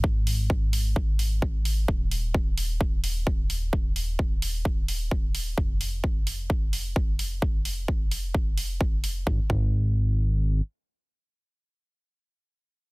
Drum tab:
HH |-o-o-o-o|-o-o-o-o|-o-o-o-o|-o-o-o-o|
BD |o-o-o-o-|o-o-o-o-|o-o-o-o-|o-o-o-o-|

HH |-o-o-o-o|--------|--------|
BD |o-o-o-o-|oo------|--------|